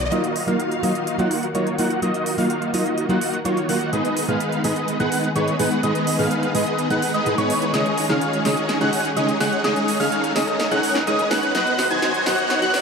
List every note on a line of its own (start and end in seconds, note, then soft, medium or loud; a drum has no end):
0.00 riser medium
0.11 11.51 D#3 medium
0.11 0.20 F#3 medium
0.11 3.89 F#3 medium
0.11 3.89 A#3 medium
0.11 0.45 A#3 medium
0.11 0.20 A#3 medium
0.11 0.45 D#4 medium
0.11 0.20 D#4 medium
0.11 0.45 F4 medium
0.11 0.20 F4 medium
0.11 0.45 F#4 medium
0.11 0.45 D#5 medium
0.11 2.00 F5 medium
0.11 0.45 D#6 loud
0.11 closed hi-hat medium
0.11 riser medium
0.24 closed hi-hat soft
0.36 open hi-hat loud
0.47 0.55 F#3 medium
0.47 0.56 A#3 medium
0.47 0.80 A#3 medium
0.47 0.80 D#4 medium
0.47 0.56 D#4 medium
0.47 0.80 F4 medium
0.47 0.56 F4 medium
0.47 0.80 F#4 medium
0.47 0.80 F5 medium
0.47 0.81 F6 medium
0.47 closed hi-hat soft
0.60 closed hi-hat medium
0.71 closed hi-hat soft
0.83 0.91 F#3 medium
0.83 0.91 A#3 medium
0.83 1.16 A#3 medium
0.83 1.16 D#4 medium
0.83 0.91 D#4 medium
0.83 1.16 F4 medium
0.83 0.92 F4 medium
0.83 1.16 F#4 medium
0.83 1.16 D#5 medium
0.83 1.16 D#6 medium
0.83 open hi-hat loud
0.95 closed hi-hat soft
1.07 closed hi-hat medium
1.18 1.27 F#3 loud
1.18 1.27 A#3 medium
1.18 1.47 A#3 medium
1.18 1.47 D#4 medium
1.18 1.27 D#4 medium
1.18 1.47 F4 medium
1.18 1.27 F4 loud
1.18 1.47 F#4 medium
1.18 1.47 F#5 loud
1.18 1.47 F#6 loud
1.18 closed hi-hat soft
1.31 open hi-hat loud
1.43 closed hi-hat soft
1.54 1.67 F#3 medium
1.54 1.68 A#3 medium
1.54 1.76 A#3 medium
1.54 1.76 D#4 medium
1.54 1.68 D#4 medium
1.54 1.76 F4 medium
1.54 1.68 F4 medium
1.54 1.76 F#4 medium
1.54 1.76 C#5 medium
1.54 1.76 C#6 medium
1.54 closed hi-hat medium
1.67 closed hi-hat soft
1.78 1.86 F#3 medium
1.78 1.87 A#3 medium
1.78 2.00 A#3 medium
1.78 2.00 D#4 medium
1.78 1.87 D#4 medium
1.78 2.00 F4 medium
1.78 1.87 F4 medium
1.78 2.00 F#4 medium
1.78 2.00 F#5 loud
1.78 2.00 F#6 loud
1.78 open hi-hat loud
1.90 closed hi-hat soft
2.02 2.10 F#3 medium
2.02 2.10 A#3 medium
2.02 2.35 A#3 medium
2.02 2.35 D#4 medium
2.02 2.11 D#4 medium
2.02 2.35 F4 medium
2.02 2.11 F4 medium
2.02 2.35 F#4 medium
2.02 2.35 D#5 medium
2.02 2.35 D#6 medium
2.02 closed hi-hat medium
2.14 closed hi-hat soft
2.26 open hi-hat loud
2.37 2.46 F#3 medium
2.37 2.46 A#3 medium
2.37 2.71 A#3 medium
2.37 2.71 D#4 medium
2.37 2.46 D#4 medium
2.37 2.71 F4 medium
2.37 2.46 F4 medium
2.37 2.71 F#4 medium
2.37 2.71 F5 medium
2.37 2.71 F6 medium
2.37 open hi-hat medium
2.50 closed hi-hat medium
2.62 closed hi-hat soft
2.73 2.82 F#3 medium
2.73 2.82 A#3 medium
2.73 3.07 A#3 medium
2.73 3.07 D#4 medium
2.73 2.82 D#4 medium
2.73 3.07 F4 medium
2.73 2.82 F4 loud
2.73 3.07 F#4 medium
2.73 3.07 D#5 medium
2.73 3.07 D#6 medium
2.73 open hi-hat loud
2.86 closed hi-hat soft
2.98 closed hi-hat medium
3.09 3.17 F#3 loud
3.09 3.17 A#3 medium
3.09 3.38 A#3 medium
3.09 3.38 D#4 medium
3.09 3.18 D#4 medium
3.09 3.38 F4 medium
3.09 3.18 F4 loud
3.09 3.38 F#4 medium
3.09 3.38 F#5 loud
3.09 3.38 F#6 loud
3.09 closed hi-hat soft
3.21 open hi-hat loud
3.33 closed hi-hat soft
3.45 3.58 F#3 medium
3.45 3.58 A#3 medium
3.45 3.66 A#3 medium
3.45 3.66 D#4 medium
3.45 3.58 D#4 medium
3.45 3.66 F4 medium
3.45 3.58 F4 medium
3.45 3.66 F#4 medium
3.45 3.66 C#5 medium
3.45 3.66 C#6 medium
3.45 closed hi-hat medium
3.57 closed hi-hat soft
3.68 3.77 F#3 medium
3.68 3.77 A#3 medium
3.68 3.90 A#3 medium
3.68 3.90 D#4 medium
3.68 3.77 D#4 medium
3.68 3.90 F4 medium
3.68 3.77 F4 medium
3.68 3.90 F#4 medium
3.68 3.90 F#5 loud
3.68 3.90 F#6 loud
3.68 open hi-hat loud
3.92 4.01 G#2 medium
3.92 4.01 G#3 medium
3.92 4.26 G#3 medium
3.92 7.70 G#3 medium
3.92 4.01 B3 medium
3.92 4.26 B3 medium
3.92 7.70 B3 medium
3.92 4.26 D#4 medium
3.92 4.01 D#4 medium
3.92 11.51 G#4 medium
3.92 4.01 G#4 medium
3.92 4.26 B4 medium
3.92 4.26 D#5 medium
3.92 4.26 D#6 medium
3.92 closed hi-hat medium
4.05 closed hi-hat soft
4.17 open hi-hat loud
4.28 4.36 G#2 medium
4.28 4.36 G#3 medium
4.28 4.61 G#3 medium
4.28 4.37 B3 medium
4.28 4.61 B3 medium
4.28 4.61 D#4 medium
4.28 4.37 D#4 medium
4.28 4.37 G#4 medium
4.28 4.61 B4 medium
4.28 4.61 F5 medium
4.28 4.61 F6 medium
4.28 closed hi-hat soft
4.40 closed hi-hat medium
4.52 closed hi-hat soft
4.64 4.72 G#2 medium
4.64 4.97 G#3 medium
4.64 4.72 G#3 medium
4.64 4.72 B3 medium
4.64 4.97 B3 medium
4.64 4.97 D#4 medium
4.64 4.73 D#4 medium
4.64 4.73 G#4 loud
4.64 4.97 B4 medium
4.64 4.97 D#5 medium
4.64 4.97 D#6 medium
4.64 open hi-hat loud
4.76 closed hi-hat soft
4.88 closed hi-hat medium
4.99 5.08 G#2 loud
4.99 5.08 G#3 medium
4.99 5.28 G#3 medium
4.99 5.08 B3 medium
4.99 5.28 B3 medium
4.99 5.28 D#4 medium
4.99 5.08 D#4 medium
4.99 5.08 G#4 loud
4.99 5.28 B4 medium
4.99 5.28 F#5 loud
4.99 5.28 F#6 loud
4.99 closed hi-hat soft
5.12 open hi-hat loud
5.24 closed hi-hat soft
5.35 5.48 G#2 medium
5.35 5.57 G#3 medium
5.35 5.48 G#3 medium
5.35 5.49 B3 medium
5.35 5.57 B3 medium
5.35 5.57 D#4 medium
5.35 5.49 D#4 medium
5.35 5.49 G#4 medium
5.35 5.57 B4 medium
5.35 5.57 C#5 medium
5.35 5.57 C#6 medium
5.35 closed hi-hat medium
5.48 closed hi-hat soft
5.59 5.67 G#2 medium
5.59 5.67 G#3 medium
5.59 5.80 G#3 medium
5.59 5.68 B3 medium
5.59 5.80 B3 medium
5.59 5.80 D#4 medium
5.59 5.68 D#4 medium
5.59 5.68 G#4 medium
5.59 5.81 B4 medium
5.59 5.81 F#5 loud
5.59 5.80 F#6 medium
5.59 open hi-hat loud
5.71 closed hi-hat soft
5.83 5.91 G#2 medium
5.83 5.91 G#3 medium
5.83 6.16 G#3 medium
5.83 5.91 B3 medium
5.83 6.16 B3 medium
5.83 6.16 D#4 medium
5.83 5.92 D#4 medium
5.83 5.92 G#4 medium
5.83 6.16 B4 medium
5.83 6.16 D#5 medium
5.83 6.16 D#6 medium
5.83 closed hi-hat medium
5.95 closed hi-hat soft
6.07 open hi-hat loud
6.18 6.27 G#2 medium
6.18 6.27 G#3 medium
6.18 6.52 G#3 medium
6.18 6.27 B3 medium
6.18 6.52 B3 medium
6.18 6.52 D#4 medium
6.18 6.27 D#4 medium
6.18 6.27 G#4 medium
6.18 6.52 B4 medium
6.18 6.52 F5 medium
6.18 6.52 F6 medium
6.18 open hi-hat medium
6.31 closed hi-hat medium
6.43 closed hi-hat soft
6.54 6.62 G#2 medium
6.54 6.63 G#3 medium
6.54 6.88 G#3 medium
6.54 6.63 B3 medium
6.54 6.88 B3 medium
6.54 6.88 D#4 medium
6.54 6.63 D#4 medium
6.54 6.63 G#4 medium
6.54 6.88 B4 medium
6.54 6.88 D#5 medium
6.54 6.88 D#6 medium
6.54 open hi-hat loud
6.67 closed hi-hat soft
6.78 closed hi-hat medium
6.90 6.98 G#2 loud
6.90 6.98 G#3 medium
6.90 7.12 G#3 medium
6.90 7.12 B3 medium
6.90 6.99 B3 medium
6.90 7.12 D#4 medium
6.90 6.99 D#4 medium
6.90 6.99 G#4 loud
6.90 7.12 B4 medium
6.90 7.12 F#5 loud
6.90 7.12 F#6 loud
6.90 closed hi-hat soft
7.02 open hi-hat loud
7.14 7.35 G#3 loud
7.14 7.35 B3 medium
7.14 7.35 D#4 medium
7.14 7.35 B4 medium
7.14 7.35 D#5 loud
7.14 7.35 D#6 loud
7.14 closed hi-hat soft
7.25 7.34 G#2 medium
7.25 7.34 G#3 medium
7.25 7.34 B3 medium
7.25 7.34 D#4 medium
7.25 7.34 G#4 loud
7.25 closed hi-hat medium
7.37 7.51 G#2 medium
7.37 7.51 G#3 medium
7.37 7.71 G#3 medium
7.37 7.51 B3 medium
7.37 7.71 B3 medium
7.37 7.71 D#4 medium
7.37 7.51 D#4 medium
7.37 7.51 G#4 loud
7.37 7.71 B4 medium
7.37 7.71 C#5 loud
7.37 7.71 C#6 loud
7.37 closed hi-hat soft
7.50 open hi-hat loud
7.62 closed hi-hat soft
7.73 7.82 C#3 medium
7.73 8.07 G#3 medium
7.73 11.51 G#3 medium
7.73 7.82 G#3 medium
7.73 7.82 C#4 medium
7.73 9.62 C#4 medium
7.73 8.07 C#4 medium
7.73 8.07 D#4 medium
7.73 7.82 D#4 medium
7.73 7.82 G#4 medium
7.73 8.07 C#5 medium
7.73 8.07 D#5 medium
7.73 8.07 D#6 medium
7.73 snare medium
7.73 closed hi-hat medium
7.86 closed hi-hat soft
7.98 open hi-hat loud
8.09 8.17 C#3 medium
8.09 8.17 G#3 medium
8.09 8.42 G#3 medium
8.09 8.18 C#4 medium
8.09 8.42 C#4 medium
8.09 8.42 D#4 medium
8.09 8.18 D#4 medium
8.09 8.18 G#4 medium
8.09 8.42 C#5 medium
8.09 8.42 F5 medium
8.09 8.42 F6 medium
8.09 snare soft
8.21 closed hi-hat medium
8.33 closed hi-hat soft
8.44 8.53 C#3 medium
8.44 8.53 G#3 medium
8.44 8.78 G#3 medium
8.44 8.53 C#4 medium
8.44 8.78 C#4 medium
8.44 8.78 D#4 medium
8.44 8.53 D#4 medium
8.44 8.54 G#4 loud
8.44 8.78 C#5 medium
8.44 8.78 D#5 medium
8.44 8.78 D#6 medium
8.44 snare medium
8.44 open hi-hat loud
8.57 closed hi-hat soft
8.69 snare medium
8.69 closed hi-hat medium
8.80 8.89 C#3 loud
8.80 8.89 G#3 medium
8.80 9.09 G#3 medium
8.80 8.89 C#4 medium
8.80 9.09 C#4 medium
8.80 9.09 D#4 medium
8.80 8.89 D#4 medium
8.80 8.89 G#4 loud
8.80 9.09 C#5 medium
8.80 9.09 F#5 loud
8.80 9.09 F#6 loud
8.80 closed hi-hat soft
8.93 open hi-hat loud
9.05 closed hi-hat soft
9.16 9.29 C#3 medium
9.16 9.38 G#3 medium
9.16 9.29 G#3 medium
9.16 9.30 C#4 medium
9.16 9.38 C#4 medium
9.16 9.38 D#4 medium
9.16 9.30 D#4 medium
9.16 9.30 G#4 medium
9.16 9.38 C#5 medium
9.16 9.38 D#5 medium
9.16 9.38 D#6 medium
9.16 closed hi-hat medium
9.29 closed hi-hat soft
9.40 9.48 C#3 medium
9.40 9.48 G#3 medium
9.40 9.61 G#3 medium
9.40 9.49 C#4 medium
9.40 9.61 C#4 medium
9.40 9.61 D#4 medium
9.40 9.49 D#4 medium
9.40 9.49 G#4 medium
9.40 9.61 C#5 medium
9.40 9.61 F#5 loud
9.40 9.61 F#6 loud
9.40 snare medium
9.40 open hi-hat loud
9.52 closed hi-hat soft
9.64 9.72 C#3 medium
9.64 9.72 G#3 medium
9.64 9.97 G#3 medium
9.64 9.72 C#4 medium
9.64 9.97 C#4 medium
9.64 9.97 D#4 medium
9.64 11.53 D#4 medium
9.64 9.73 D#4 medium
9.64 9.73 G#4 medium
9.64 9.97 C#5 medium
9.64 9.97 D#5 medium
9.64 9.97 D#6 medium
9.64 snare medium
9.64 closed hi-hat medium
9.76 closed hi-hat soft
9.88 open hi-hat loud
9.99 10.08 C#3 medium
9.99 10.08 G#3 medium
9.99 10.33 G#3 medium
9.99 10.08 C#4 medium
9.99 10.33 C#4 medium
9.99 10.33 D#4 medium
9.99 10.08 D#4 medium
9.99 10.08 G#4 medium
9.99 10.33 C#5 medium
9.99 10.33 F5 medium
9.99 10.33 F6 medium
9.99 open hi-hat medium
10.12 closed hi-hat medium
10.24 closed hi-hat soft
10.35 10.44 C#3 medium
10.35 10.44 G#3 medium
10.35 10.69 G#3 medium
10.35 10.44 C#4 medium
10.35 10.69 C#4 medium
10.35 10.69 D#4 medium
10.35 10.44 D#4 medium
10.35 10.44 G#4 loud
10.35 10.69 C#5 medium
10.35 10.69 D#5 medium
10.35 10.69 D#6 medium
10.35 snare medium
10.35 open hi-hat loud
10.48 closed hi-hat soft
10.60 snare medium
10.60 closed hi-hat medium
10.71 10.79 C#3 loud
10.71 11.00 G#3 medium
10.71 10.79 G#3 medium
10.71 10.80 C#4 medium
10.71 11.00 C#4 medium
10.71 11.00 D#4 medium
10.71 10.80 D#4 loud
10.71 10.80 G#4 loud
10.71 11.00 C#5 medium
10.71 11.00 F#5 loud
10.71 11.00 F#6 loud
10.71 closed hi-hat soft
10.83 open hi-hat loud
10.95 snare medium
11.06 11.20 C#3 medium
11.06 11.28 G#3 medium
11.06 11.20 G#3 medium
11.06 11.20 C#4 medium
11.06 11.28 C#4 medium
11.06 11.28 D#4 medium
11.06 11.20 D#4 medium
11.06 11.20 G#4 loud
11.06 11.28 C#5 medium
11.06 11.28 D#5 medium
11.06 11.28 D#6 medium
11.06 closed hi-hat medium
11.19 closed hi-hat soft
11.30 11.39 G#3 medium
11.30 11.52 G#3 medium
11.30 11.52 C#4 medium
11.30 11.39 C#4 medium
11.30 11.52 D#4 medium
11.30 11.39 D#4 medium
11.30 11.39 G#4 medium
11.30 11.52 C#5 medium
11.30 11.52 F#5 loud
11.30 11.52 F#6 loud
11.30 snare medium
11.30 open hi-hat loud
11.43 closed hi-hat soft
11.54 11.62 B2 medium
11.54 12.81 D#3 medium
11.54 11.63 F#3 medium
11.54 12.81 F#3 medium
11.54 11.63 B3 medium
11.54 11.88 B3 medium
11.54 12.81 B3 medium
11.54 11.88 D#4 medium
11.54 11.63 D#4 medium
11.54 11.88 F#4 medium
11.54 12.81 F#4 medium
11.54 11.63 F#4 medium
11.54 11.88 D#5 medium
11.54 11.88 F#5 medium
11.54 11.88 F#6 loud
11.54 snare medium
11.54 closed hi-hat medium
11.67 closed hi-hat soft
11.79 snare medium
11.79 open hi-hat loud
11.90 11.98 B2 medium
11.90 11.98 F#3 medium
11.90 11.98 B3 medium
11.90 12.23 B3 medium
11.90 12.23 D#4 medium
11.90 11.99 D#4 medium
11.90 12.23 F#4 medium
11.90 11.99 F#4 medium
11.90 12.23 D#5 medium
11.90 12.23 G#5 medium
11.90 12.23 G#6 medium
11.90 closed hi-hat soft
12.02 snare medium
12.02 closed hi-hat medium
12.14 closed hi-hat soft
12.25 12.34 B2 medium
12.25 12.34 F#3 medium
12.25 12.34 B3 medium
12.25 12.59 B3 medium
12.25 12.59 D#4 medium
12.25 12.34 D#4 medium
12.25 12.59 F#4 medium
12.25 12.34 F#4 loud
12.25 12.59 D#5 medium
12.25 12.59 F#5 medium
12.25 12.59 F#6 medium
12.25 snare medium
12.25 open hi-hat loud
12.38 closed hi-hat soft
12.50 snare medium
12.50 closed hi-hat medium
12.61 12.70 B2 loud
12.61 12.70 F#3 loud
12.61 12.70 B3 loud
12.61 12.81 B3 medium
12.61 12.81 D#4 medium
12.61 12.70 D#4 loud
12.61 12.81 F#4 medium
12.61 12.70 F#4 loud
12.61 12.81 D#5 medium
12.61 12.81 F#5 loud
12.61 12.81 F#6 loud
12.61 closed hi-hat soft
12.74 snare medium
12.74 open hi-hat loud